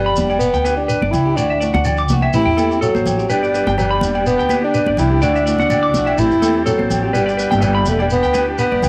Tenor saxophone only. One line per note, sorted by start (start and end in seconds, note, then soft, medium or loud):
0.00 0.37 G3 medium
0.39 0.74 B3 loud
0.77 1.12 D4 medium
1.11 1.37 E4 medium
1.36 2.06 D4 medium
2.34 2.78 E4 loud
2.82 3.32 F#3 medium
3.31 3.77 G3 medium
3.77 4.22 G3 medium
4.26 4.61 B3 loud
4.64 4.96 D4 medium
4.99 5.25 E4 medium
5.23 6.20 D4 loud
6.19 6.65 E4 loud
6.66 7.11 F#3 medium
7.13 7.59 G3 medium
7.63 7.90 G3 medium
7.89 8.01 A3 medium
8.01 8.06 G3 medium
8.12 8.46 B3 loud
8.59 8.89 B3 loud